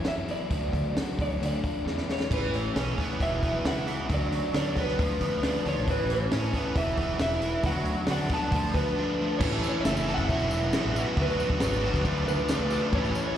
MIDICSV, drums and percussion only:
0, 0, Header, 1, 2, 480
1, 0, Start_track
1, 0, Key_signature, 3, "major"
1, 0, Tempo, 446761
1, 557, Time_signature, 4, 2, 24, 8
1, 6315, Tempo, 441176
1, 14470, End_track
2, 0, Start_track
2, 0, Title_t, "Drums"
2, 52, Note_on_c, 9, 38, 99
2, 52, Note_on_c, 9, 46, 58
2, 159, Note_off_c, 9, 38, 0
2, 159, Note_off_c, 9, 46, 0
2, 306, Note_on_c, 9, 46, 42
2, 414, Note_off_c, 9, 46, 0
2, 544, Note_on_c, 9, 36, 91
2, 544, Note_on_c, 9, 46, 64
2, 651, Note_off_c, 9, 36, 0
2, 651, Note_off_c, 9, 46, 0
2, 788, Note_on_c, 9, 36, 70
2, 798, Note_on_c, 9, 46, 48
2, 895, Note_off_c, 9, 36, 0
2, 905, Note_off_c, 9, 46, 0
2, 1039, Note_on_c, 9, 38, 99
2, 1039, Note_on_c, 9, 46, 65
2, 1146, Note_off_c, 9, 38, 0
2, 1146, Note_off_c, 9, 46, 0
2, 1275, Note_on_c, 9, 36, 73
2, 1287, Note_on_c, 9, 46, 47
2, 1383, Note_off_c, 9, 36, 0
2, 1394, Note_off_c, 9, 46, 0
2, 1535, Note_on_c, 9, 46, 62
2, 1642, Note_off_c, 9, 46, 0
2, 1760, Note_on_c, 9, 36, 73
2, 1769, Note_on_c, 9, 46, 44
2, 1867, Note_off_c, 9, 36, 0
2, 1876, Note_off_c, 9, 46, 0
2, 2011, Note_on_c, 9, 38, 52
2, 2119, Note_off_c, 9, 38, 0
2, 2125, Note_on_c, 9, 38, 53
2, 2233, Note_off_c, 9, 38, 0
2, 2250, Note_on_c, 9, 38, 67
2, 2357, Note_off_c, 9, 38, 0
2, 2367, Note_on_c, 9, 38, 71
2, 2474, Note_off_c, 9, 38, 0
2, 2480, Note_on_c, 9, 36, 97
2, 2487, Note_on_c, 9, 49, 95
2, 2588, Note_off_c, 9, 36, 0
2, 2594, Note_off_c, 9, 49, 0
2, 2726, Note_on_c, 9, 38, 28
2, 2726, Note_on_c, 9, 46, 48
2, 2834, Note_off_c, 9, 38, 0
2, 2834, Note_off_c, 9, 46, 0
2, 2967, Note_on_c, 9, 38, 103
2, 2967, Note_on_c, 9, 46, 65
2, 3074, Note_off_c, 9, 38, 0
2, 3074, Note_off_c, 9, 46, 0
2, 3203, Note_on_c, 9, 36, 72
2, 3205, Note_on_c, 9, 46, 46
2, 3310, Note_off_c, 9, 36, 0
2, 3312, Note_off_c, 9, 46, 0
2, 3442, Note_on_c, 9, 36, 94
2, 3446, Note_on_c, 9, 46, 64
2, 3550, Note_off_c, 9, 36, 0
2, 3553, Note_off_c, 9, 46, 0
2, 3682, Note_on_c, 9, 36, 74
2, 3683, Note_on_c, 9, 46, 44
2, 3790, Note_off_c, 9, 36, 0
2, 3791, Note_off_c, 9, 46, 0
2, 3926, Note_on_c, 9, 38, 107
2, 3926, Note_on_c, 9, 46, 71
2, 4034, Note_off_c, 9, 38, 0
2, 4034, Note_off_c, 9, 46, 0
2, 4165, Note_on_c, 9, 46, 46
2, 4273, Note_off_c, 9, 46, 0
2, 4401, Note_on_c, 9, 36, 95
2, 4403, Note_on_c, 9, 46, 66
2, 4508, Note_off_c, 9, 36, 0
2, 4510, Note_off_c, 9, 46, 0
2, 4646, Note_on_c, 9, 38, 31
2, 4646, Note_on_c, 9, 46, 53
2, 4753, Note_off_c, 9, 38, 0
2, 4753, Note_off_c, 9, 46, 0
2, 4883, Note_on_c, 9, 38, 105
2, 4883, Note_on_c, 9, 46, 77
2, 4990, Note_off_c, 9, 38, 0
2, 4990, Note_off_c, 9, 46, 0
2, 5120, Note_on_c, 9, 36, 74
2, 5122, Note_on_c, 9, 46, 53
2, 5228, Note_off_c, 9, 36, 0
2, 5230, Note_off_c, 9, 46, 0
2, 5250, Note_on_c, 9, 38, 31
2, 5358, Note_off_c, 9, 38, 0
2, 5363, Note_on_c, 9, 36, 97
2, 5368, Note_on_c, 9, 46, 70
2, 5470, Note_off_c, 9, 36, 0
2, 5476, Note_off_c, 9, 46, 0
2, 5598, Note_on_c, 9, 36, 76
2, 5598, Note_on_c, 9, 46, 50
2, 5705, Note_off_c, 9, 36, 0
2, 5705, Note_off_c, 9, 46, 0
2, 5837, Note_on_c, 9, 38, 98
2, 5837, Note_on_c, 9, 46, 71
2, 5945, Note_off_c, 9, 38, 0
2, 5945, Note_off_c, 9, 46, 0
2, 6082, Note_on_c, 9, 46, 50
2, 6189, Note_off_c, 9, 46, 0
2, 6314, Note_on_c, 9, 36, 99
2, 6318, Note_on_c, 9, 46, 66
2, 6423, Note_off_c, 9, 36, 0
2, 6427, Note_off_c, 9, 46, 0
2, 6557, Note_on_c, 9, 38, 30
2, 6557, Note_on_c, 9, 46, 52
2, 6665, Note_off_c, 9, 38, 0
2, 6665, Note_off_c, 9, 46, 0
2, 6793, Note_on_c, 9, 38, 108
2, 6793, Note_on_c, 9, 46, 67
2, 6902, Note_off_c, 9, 38, 0
2, 6902, Note_off_c, 9, 46, 0
2, 7031, Note_on_c, 9, 36, 77
2, 7035, Note_on_c, 9, 46, 46
2, 7139, Note_off_c, 9, 36, 0
2, 7144, Note_off_c, 9, 46, 0
2, 7270, Note_on_c, 9, 36, 102
2, 7271, Note_on_c, 9, 46, 64
2, 7379, Note_off_c, 9, 36, 0
2, 7380, Note_off_c, 9, 46, 0
2, 7508, Note_on_c, 9, 46, 45
2, 7510, Note_on_c, 9, 36, 74
2, 7617, Note_off_c, 9, 46, 0
2, 7619, Note_off_c, 9, 36, 0
2, 7748, Note_on_c, 9, 38, 102
2, 7748, Note_on_c, 9, 46, 69
2, 7856, Note_off_c, 9, 38, 0
2, 7856, Note_off_c, 9, 46, 0
2, 7990, Note_on_c, 9, 46, 49
2, 8099, Note_off_c, 9, 46, 0
2, 8227, Note_on_c, 9, 46, 69
2, 8229, Note_on_c, 9, 36, 97
2, 8336, Note_off_c, 9, 46, 0
2, 8338, Note_off_c, 9, 36, 0
2, 8468, Note_on_c, 9, 46, 51
2, 8577, Note_off_c, 9, 46, 0
2, 8698, Note_on_c, 9, 38, 109
2, 8698, Note_on_c, 9, 46, 78
2, 8807, Note_off_c, 9, 38, 0
2, 8807, Note_off_c, 9, 46, 0
2, 8945, Note_on_c, 9, 46, 52
2, 8948, Note_on_c, 9, 36, 79
2, 9054, Note_off_c, 9, 46, 0
2, 9057, Note_off_c, 9, 36, 0
2, 9189, Note_on_c, 9, 46, 73
2, 9190, Note_on_c, 9, 36, 108
2, 9297, Note_off_c, 9, 46, 0
2, 9299, Note_off_c, 9, 36, 0
2, 9434, Note_on_c, 9, 36, 78
2, 9441, Note_on_c, 9, 46, 56
2, 9543, Note_off_c, 9, 36, 0
2, 9549, Note_off_c, 9, 46, 0
2, 10153, Note_on_c, 9, 49, 115
2, 10153, Note_on_c, 9, 57, 57
2, 10154, Note_on_c, 9, 36, 111
2, 10262, Note_off_c, 9, 49, 0
2, 10262, Note_off_c, 9, 57, 0
2, 10263, Note_off_c, 9, 36, 0
2, 10299, Note_on_c, 9, 54, 27
2, 10405, Note_off_c, 9, 54, 0
2, 10405, Note_on_c, 9, 54, 64
2, 10514, Note_off_c, 9, 54, 0
2, 10636, Note_on_c, 9, 54, 90
2, 10639, Note_on_c, 9, 38, 109
2, 10639, Note_on_c, 9, 57, 57
2, 10745, Note_off_c, 9, 54, 0
2, 10748, Note_off_c, 9, 38, 0
2, 10748, Note_off_c, 9, 57, 0
2, 10764, Note_on_c, 9, 54, 69
2, 10872, Note_off_c, 9, 54, 0
2, 10893, Note_on_c, 9, 54, 28
2, 10995, Note_on_c, 9, 36, 75
2, 11002, Note_off_c, 9, 54, 0
2, 11002, Note_on_c, 9, 54, 26
2, 11104, Note_off_c, 9, 36, 0
2, 11111, Note_off_c, 9, 54, 0
2, 11118, Note_on_c, 9, 36, 89
2, 11125, Note_on_c, 9, 54, 26
2, 11125, Note_on_c, 9, 57, 53
2, 11227, Note_off_c, 9, 36, 0
2, 11228, Note_off_c, 9, 54, 0
2, 11228, Note_on_c, 9, 54, 26
2, 11234, Note_off_c, 9, 57, 0
2, 11337, Note_off_c, 9, 54, 0
2, 11353, Note_on_c, 9, 54, 75
2, 11462, Note_off_c, 9, 54, 0
2, 11485, Note_on_c, 9, 54, 27
2, 11594, Note_off_c, 9, 54, 0
2, 11594, Note_on_c, 9, 54, 94
2, 11597, Note_on_c, 9, 38, 107
2, 11597, Note_on_c, 9, 57, 62
2, 11702, Note_off_c, 9, 54, 0
2, 11706, Note_off_c, 9, 38, 0
2, 11706, Note_off_c, 9, 57, 0
2, 11846, Note_on_c, 9, 54, 72
2, 11954, Note_off_c, 9, 54, 0
2, 12073, Note_on_c, 9, 57, 58
2, 12074, Note_on_c, 9, 36, 105
2, 12182, Note_off_c, 9, 57, 0
2, 12183, Note_off_c, 9, 36, 0
2, 12215, Note_on_c, 9, 54, 29
2, 12320, Note_off_c, 9, 54, 0
2, 12320, Note_on_c, 9, 54, 73
2, 12429, Note_off_c, 9, 54, 0
2, 12430, Note_on_c, 9, 36, 79
2, 12539, Note_off_c, 9, 36, 0
2, 12544, Note_on_c, 9, 38, 106
2, 12544, Note_on_c, 9, 57, 66
2, 12566, Note_on_c, 9, 54, 89
2, 12653, Note_off_c, 9, 38, 0
2, 12653, Note_off_c, 9, 57, 0
2, 12675, Note_off_c, 9, 54, 0
2, 12686, Note_on_c, 9, 54, 71
2, 12794, Note_off_c, 9, 54, 0
2, 12812, Note_on_c, 9, 54, 30
2, 12910, Note_on_c, 9, 36, 74
2, 12915, Note_on_c, 9, 38, 32
2, 12921, Note_off_c, 9, 54, 0
2, 12926, Note_on_c, 9, 54, 26
2, 13019, Note_off_c, 9, 36, 0
2, 13024, Note_off_c, 9, 38, 0
2, 13029, Note_on_c, 9, 36, 94
2, 13032, Note_on_c, 9, 57, 61
2, 13034, Note_off_c, 9, 54, 0
2, 13035, Note_on_c, 9, 54, 27
2, 13138, Note_off_c, 9, 36, 0
2, 13140, Note_off_c, 9, 57, 0
2, 13144, Note_off_c, 9, 54, 0
2, 13164, Note_on_c, 9, 54, 26
2, 13273, Note_off_c, 9, 54, 0
2, 13285, Note_on_c, 9, 54, 73
2, 13394, Note_off_c, 9, 54, 0
2, 13401, Note_on_c, 9, 54, 29
2, 13503, Note_off_c, 9, 54, 0
2, 13503, Note_on_c, 9, 54, 87
2, 13512, Note_on_c, 9, 38, 105
2, 13512, Note_on_c, 9, 57, 64
2, 13612, Note_off_c, 9, 54, 0
2, 13621, Note_off_c, 9, 38, 0
2, 13621, Note_off_c, 9, 57, 0
2, 13742, Note_on_c, 9, 54, 70
2, 13851, Note_off_c, 9, 54, 0
2, 13986, Note_on_c, 9, 36, 111
2, 13986, Note_on_c, 9, 57, 60
2, 14095, Note_off_c, 9, 36, 0
2, 14095, Note_off_c, 9, 57, 0
2, 14114, Note_on_c, 9, 54, 29
2, 14223, Note_off_c, 9, 54, 0
2, 14228, Note_on_c, 9, 54, 70
2, 14337, Note_off_c, 9, 54, 0
2, 14470, End_track
0, 0, End_of_file